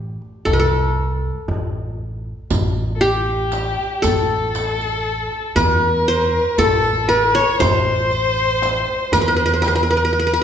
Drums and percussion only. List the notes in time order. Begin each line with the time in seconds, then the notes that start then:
0.22 darbuka ka
0.47 darbuka dum
0.99 darbuka ka
1.48 darbuka dum
2.50 riq, darbuka dum
3.02 riq
3.52 riq, darbuka tek
4.04 riq, darbuka dum
4.55 riq, darbuka tek
4.81 riq, darbuka ka
5.32 darbuka ka
5.57 riq, darbuka dum
6.58 riq, darbuka dum
6.84 riq
7.60 riq, darbuka dum
8.11 riq
8.62 riq, darbuka tek
9.12 riq, darbuka dum
9.63 riq, darbuka tek
9.89 riq, darbuka ka
10.40 darbuka ka